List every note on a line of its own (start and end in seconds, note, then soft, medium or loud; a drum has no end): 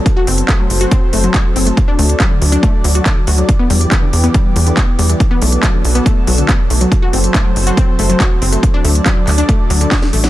0.00 3.45 F#3 medium
0.00 3.45 A4 medium
0.06 1.76 C4 medium
0.06 1.76 C5 medium
0.06 kick loud
0.06 closed hi-hat medium
0.17 0.22 F#4 loud
0.27 0.43 F#1 loud
0.27 0.32 C4 medium
0.27 open hi-hat loud
0.38 closed hi-hat medium
0.49 0.52 A3 medium
0.49 kick loud
0.49 clap loud
0.49 closed hi-hat medium
0.59 0.65 F#3 medium
0.70 0.86 F#1 medium
0.70 open hi-hat medium
0.81 0.84 F#4 loud
0.81 closed hi-hat medium
0.91 0.97 C4 loud
0.91 kick loud
0.91 closed hi-hat medium
1.13 1.29 F#1 loud
1.13 1.18 A3 medium
1.13 open hi-hat loud
1.24 1.29 F#3 medium
1.24 closed hi-hat medium
1.34 1.38 F#4 medium
1.34 kick loud
1.34 clap loud
1.34 closed hi-hat medium
1.56 1.72 F#1 loud
1.56 1.59 C4 medium
1.56 open hi-hat loud
1.67 1.74 A3 medium
1.67 closed hi-hat medium
1.77 3.47 D4 medium
1.77 6.88 D5 medium
1.77 kick loud
1.77 closed hi-hat medium
1.88 1.93 D4 loud
1.99 2.15 D2 loud
1.99 2.04 A3 medium
1.99 open hi-hat loud
2.10 closed hi-hat medium
2.20 2.23 F#3 medium
2.20 kick loud
2.20 clap loud
2.20 closed hi-hat medium
2.31 2.36 D3 medium
2.42 2.57 D2 medium
2.42 open hi-hat medium
2.52 2.55 D4 loud
2.52 closed hi-hat medium
2.63 2.68 A3 loud
2.63 kick loud
2.63 closed hi-hat medium
2.84 3.00 D2 medium
2.84 2.88 D3 medium
2.84 open hi-hat loud
2.95 2.98 F#4 medium
2.95 closed hi-hat medium
3.06 3.11 D3 medium
3.06 kick loud
3.06 clap loud
3.06 closed hi-hat medium
3.27 3.43 D2 loud
3.27 3.32 F#4 medium
3.27 open hi-hat loud
3.38 3.43 F#3 medium
3.38 closed hi-hat medium
3.49 5.18 E3 medium
3.49 5.19 B3 medium
3.49 5.18 G4 medium
3.49 kick loud
3.49 closed hi-hat medium
3.59 3.65 B3 loud
3.70 3.86 E2 loud
3.70 3.75 G3 medium
3.70 open hi-hat loud
3.81 closed hi-hat medium
3.92 3.95 E3 medium
3.92 kick loud
3.92 clap loud
3.92 closed hi-hat medium
4.02 4.07 D3 medium
4.13 4.29 E2 medium
4.13 open hi-hat medium
4.24 4.27 B3 loud
4.24 closed hi-hat medium
4.34 4.40 G3 loud
4.34 kick loud
4.34 closed hi-hat medium
4.56 4.72 E2 medium
4.56 4.61 E3 medium
4.56 open hi-hat loud
4.67 4.72 D3 medium
4.67 closed hi-hat medium
4.77 4.80 B3 medium
4.77 kick loud
4.77 clap loud
4.77 closed hi-hat medium
4.99 5.15 E2 medium
4.99 5.02 G3 medium
4.99 open hi-hat loud
5.09 5.17 E3 medium
5.09 closed hi-hat medium
5.20 10.30 F#3 medium
5.20 6.90 B3 medium
5.20 6.90 A4 medium
5.20 kick loud
5.20 closed hi-hat medium
5.31 5.36 B3 loud
5.42 5.57 B1 loud
5.42 5.47 A3 medium
5.42 open hi-hat loud
5.52 closed hi-hat medium
5.63 5.66 F#3 medium
5.63 kick loud
5.63 clap loud
5.63 closed hi-hat medium
5.74 5.79 D3 medium
5.84 6.00 B1 medium
5.84 open hi-hat medium
5.95 5.98 B3 loud
5.95 closed hi-hat medium
6.06 6.11 A3 loud
6.06 kick loud
6.06 closed hi-hat medium
6.27 6.43 B1 medium
6.27 6.33 F#3 medium
6.27 open hi-hat loud
6.38 6.43 D3 medium
6.38 closed hi-hat medium
6.49 6.52 B3 medium
6.49 kick loud
6.49 clap loud
6.49 closed hi-hat medium
6.70 6.86 B1 medium
6.70 6.73 A3 medium
6.70 open hi-hat medium
6.81 6.89 F#3 medium
6.81 closed hi-hat medium
6.92 8.61 C4 medium
6.92 8.61 A4 medium
6.92 8.61 C5 medium
6.92 kick loud
6.92 closed hi-hat medium
7.02 7.07 F#4 loud
7.13 7.29 F#1 loud
7.13 7.18 C4 medium
7.13 open hi-hat loud
7.24 closed hi-hat medium
7.34 7.38 A3 medium
7.34 kick loud
7.34 clap loud
7.34 closed hi-hat medium
7.45 7.50 F#3 medium
7.56 7.72 F#1 loud
7.56 open hi-hat medium
7.67 7.70 F#4 loud
7.67 closed hi-hat medium
7.77 7.82 C4 loud
7.77 kick loud
7.77 closed hi-hat medium
7.99 8.15 F#1 medium
7.99 8.04 A3 medium
7.99 open hi-hat loud
8.10 8.15 F#3 medium
8.10 closed hi-hat medium
8.20 8.23 F#4 medium
8.20 kick loud
8.20 clap loud
8.20 closed hi-hat medium
8.42 8.57 F#1 loud
8.42 8.45 C4 medium
8.42 open hi-hat medium
8.52 8.60 A3 medium
8.52 closed hi-hat medium
8.63 10.30 D4 medium
8.63 10.30 A4 medium
8.63 10.30 D5 medium
8.63 kick loud
8.63 closed hi-hat medium
8.74 8.79 D4 loud
8.84 9.00 D2 loud
8.84 8.90 A3 medium
8.84 open hi-hat loud
8.95 closed hi-hat medium
9.06 9.09 F#3 medium
9.06 kick loud
9.06 clap loud
9.06 closed hi-hat medium
9.17 9.22 D3 medium
9.27 9.43 D2 medium
9.27 clap soft
9.27 open hi-hat medium
9.38 9.41 D4 loud
9.38 closed hi-hat medium
9.49 9.54 A3 loud
9.49 kick loud
9.49 closed hi-hat medium
9.70 9.86 D2 loud
9.70 9.75 F#3 medium
9.70 open hi-hat loud
9.81 9.86 D3 medium
9.81 closed hi-hat medium
9.92 9.95 D4 medium
9.92 kick loud
9.92 snare medium
9.92 clap loud
9.92 closed hi-hat medium
10.02 snare medium
10.13 10.29 A1 medium
10.13 10.16 A3 medium
10.13 open hi-hat medium
10.24 10.30 F#3 medium
10.24 snare medium
10.24 closed hi-hat medium